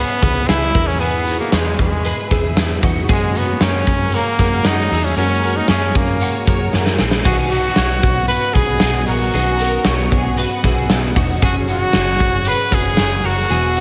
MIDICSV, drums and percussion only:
0, 0, Header, 1, 2, 480
1, 0, Start_track
1, 0, Key_signature, 5, "major"
1, 0, Tempo, 520833
1, 925, Time_signature, 4, 2, 24, 8
1, 12722, End_track
2, 0, Start_track
2, 0, Title_t, "Drums"
2, 208, Note_on_c, 9, 36, 91
2, 215, Note_on_c, 9, 42, 64
2, 300, Note_off_c, 9, 36, 0
2, 307, Note_off_c, 9, 42, 0
2, 450, Note_on_c, 9, 38, 108
2, 454, Note_on_c, 9, 42, 94
2, 543, Note_off_c, 9, 38, 0
2, 546, Note_off_c, 9, 42, 0
2, 690, Note_on_c, 9, 36, 101
2, 695, Note_on_c, 9, 46, 78
2, 782, Note_off_c, 9, 36, 0
2, 787, Note_off_c, 9, 46, 0
2, 930, Note_on_c, 9, 42, 86
2, 1022, Note_off_c, 9, 42, 0
2, 1167, Note_on_c, 9, 42, 78
2, 1259, Note_off_c, 9, 42, 0
2, 1404, Note_on_c, 9, 38, 118
2, 1408, Note_on_c, 9, 42, 88
2, 1496, Note_off_c, 9, 38, 0
2, 1500, Note_off_c, 9, 42, 0
2, 1650, Note_on_c, 9, 36, 76
2, 1652, Note_on_c, 9, 42, 68
2, 1742, Note_off_c, 9, 36, 0
2, 1744, Note_off_c, 9, 42, 0
2, 1886, Note_on_c, 9, 42, 102
2, 1978, Note_off_c, 9, 42, 0
2, 2128, Note_on_c, 9, 38, 34
2, 2130, Note_on_c, 9, 36, 91
2, 2136, Note_on_c, 9, 42, 66
2, 2220, Note_off_c, 9, 38, 0
2, 2222, Note_off_c, 9, 36, 0
2, 2229, Note_off_c, 9, 42, 0
2, 2368, Note_on_c, 9, 38, 120
2, 2371, Note_on_c, 9, 42, 100
2, 2460, Note_off_c, 9, 38, 0
2, 2463, Note_off_c, 9, 42, 0
2, 2608, Note_on_c, 9, 36, 99
2, 2613, Note_on_c, 9, 46, 66
2, 2701, Note_off_c, 9, 36, 0
2, 2705, Note_off_c, 9, 46, 0
2, 2850, Note_on_c, 9, 36, 119
2, 2852, Note_on_c, 9, 42, 87
2, 2942, Note_off_c, 9, 36, 0
2, 2944, Note_off_c, 9, 42, 0
2, 3089, Note_on_c, 9, 42, 84
2, 3182, Note_off_c, 9, 42, 0
2, 3324, Note_on_c, 9, 38, 117
2, 3328, Note_on_c, 9, 42, 88
2, 3416, Note_off_c, 9, 38, 0
2, 3421, Note_off_c, 9, 42, 0
2, 3568, Note_on_c, 9, 36, 90
2, 3569, Note_on_c, 9, 42, 67
2, 3660, Note_off_c, 9, 36, 0
2, 3661, Note_off_c, 9, 42, 0
2, 3799, Note_on_c, 9, 42, 99
2, 3891, Note_off_c, 9, 42, 0
2, 4039, Note_on_c, 9, 38, 31
2, 4047, Note_on_c, 9, 36, 83
2, 4048, Note_on_c, 9, 42, 67
2, 4132, Note_off_c, 9, 38, 0
2, 4139, Note_off_c, 9, 36, 0
2, 4140, Note_off_c, 9, 42, 0
2, 4282, Note_on_c, 9, 38, 115
2, 4285, Note_on_c, 9, 42, 102
2, 4374, Note_off_c, 9, 38, 0
2, 4377, Note_off_c, 9, 42, 0
2, 4524, Note_on_c, 9, 46, 70
2, 4616, Note_off_c, 9, 46, 0
2, 4767, Note_on_c, 9, 42, 91
2, 4859, Note_off_c, 9, 42, 0
2, 5005, Note_on_c, 9, 42, 82
2, 5097, Note_off_c, 9, 42, 0
2, 5235, Note_on_c, 9, 38, 100
2, 5239, Note_on_c, 9, 42, 97
2, 5327, Note_off_c, 9, 38, 0
2, 5331, Note_off_c, 9, 42, 0
2, 5483, Note_on_c, 9, 42, 67
2, 5486, Note_on_c, 9, 36, 95
2, 5576, Note_off_c, 9, 42, 0
2, 5579, Note_off_c, 9, 36, 0
2, 5724, Note_on_c, 9, 42, 101
2, 5816, Note_off_c, 9, 42, 0
2, 5966, Note_on_c, 9, 36, 92
2, 5970, Note_on_c, 9, 42, 64
2, 6059, Note_off_c, 9, 36, 0
2, 6062, Note_off_c, 9, 42, 0
2, 6203, Note_on_c, 9, 38, 63
2, 6295, Note_off_c, 9, 38, 0
2, 6323, Note_on_c, 9, 38, 62
2, 6415, Note_off_c, 9, 38, 0
2, 6437, Note_on_c, 9, 38, 92
2, 6529, Note_off_c, 9, 38, 0
2, 6555, Note_on_c, 9, 38, 95
2, 6647, Note_off_c, 9, 38, 0
2, 6676, Note_on_c, 9, 49, 107
2, 6685, Note_on_c, 9, 36, 125
2, 6768, Note_off_c, 9, 49, 0
2, 6777, Note_off_c, 9, 36, 0
2, 6918, Note_on_c, 9, 42, 77
2, 7010, Note_off_c, 9, 42, 0
2, 7151, Note_on_c, 9, 38, 116
2, 7155, Note_on_c, 9, 42, 96
2, 7243, Note_off_c, 9, 38, 0
2, 7248, Note_off_c, 9, 42, 0
2, 7396, Note_on_c, 9, 42, 70
2, 7403, Note_on_c, 9, 36, 93
2, 7488, Note_off_c, 9, 42, 0
2, 7495, Note_off_c, 9, 36, 0
2, 7633, Note_on_c, 9, 42, 103
2, 7725, Note_off_c, 9, 42, 0
2, 7879, Note_on_c, 9, 42, 67
2, 7882, Note_on_c, 9, 36, 97
2, 7971, Note_off_c, 9, 42, 0
2, 7974, Note_off_c, 9, 36, 0
2, 8110, Note_on_c, 9, 38, 126
2, 8113, Note_on_c, 9, 42, 109
2, 8202, Note_off_c, 9, 38, 0
2, 8205, Note_off_c, 9, 42, 0
2, 8359, Note_on_c, 9, 46, 84
2, 8451, Note_off_c, 9, 46, 0
2, 8605, Note_on_c, 9, 42, 89
2, 8697, Note_off_c, 9, 42, 0
2, 8836, Note_on_c, 9, 42, 82
2, 8928, Note_off_c, 9, 42, 0
2, 9074, Note_on_c, 9, 38, 126
2, 9079, Note_on_c, 9, 42, 93
2, 9166, Note_off_c, 9, 38, 0
2, 9171, Note_off_c, 9, 42, 0
2, 9321, Note_on_c, 9, 42, 68
2, 9326, Note_on_c, 9, 36, 80
2, 9413, Note_off_c, 9, 42, 0
2, 9418, Note_off_c, 9, 36, 0
2, 9559, Note_on_c, 9, 42, 108
2, 9651, Note_off_c, 9, 42, 0
2, 9794, Note_on_c, 9, 38, 34
2, 9802, Note_on_c, 9, 42, 73
2, 9805, Note_on_c, 9, 36, 93
2, 9886, Note_off_c, 9, 38, 0
2, 9895, Note_off_c, 9, 42, 0
2, 9897, Note_off_c, 9, 36, 0
2, 10042, Note_on_c, 9, 38, 122
2, 10045, Note_on_c, 9, 42, 107
2, 10134, Note_off_c, 9, 38, 0
2, 10138, Note_off_c, 9, 42, 0
2, 10287, Note_on_c, 9, 36, 100
2, 10288, Note_on_c, 9, 46, 72
2, 10379, Note_off_c, 9, 36, 0
2, 10380, Note_off_c, 9, 46, 0
2, 10526, Note_on_c, 9, 42, 86
2, 10528, Note_on_c, 9, 36, 123
2, 10618, Note_off_c, 9, 42, 0
2, 10620, Note_off_c, 9, 36, 0
2, 10762, Note_on_c, 9, 42, 83
2, 10854, Note_off_c, 9, 42, 0
2, 10997, Note_on_c, 9, 38, 105
2, 11001, Note_on_c, 9, 42, 91
2, 11089, Note_off_c, 9, 38, 0
2, 11093, Note_off_c, 9, 42, 0
2, 11243, Note_on_c, 9, 42, 71
2, 11247, Note_on_c, 9, 36, 88
2, 11335, Note_off_c, 9, 42, 0
2, 11339, Note_off_c, 9, 36, 0
2, 11475, Note_on_c, 9, 42, 113
2, 11567, Note_off_c, 9, 42, 0
2, 11713, Note_on_c, 9, 38, 35
2, 11721, Note_on_c, 9, 42, 73
2, 11722, Note_on_c, 9, 36, 104
2, 11805, Note_off_c, 9, 38, 0
2, 11813, Note_off_c, 9, 42, 0
2, 11815, Note_off_c, 9, 36, 0
2, 11953, Note_on_c, 9, 38, 108
2, 11957, Note_on_c, 9, 42, 102
2, 12045, Note_off_c, 9, 38, 0
2, 12049, Note_off_c, 9, 42, 0
2, 12193, Note_on_c, 9, 46, 79
2, 12285, Note_off_c, 9, 46, 0
2, 12437, Note_on_c, 9, 42, 91
2, 12529, Note_off_c, 9, 42, 0
2, 12677, Note_on_c, 9, 42, 83
2, 12722, Note_off_c, 9, 42, 0
2, 12722, End_track
0, 0, End_of_file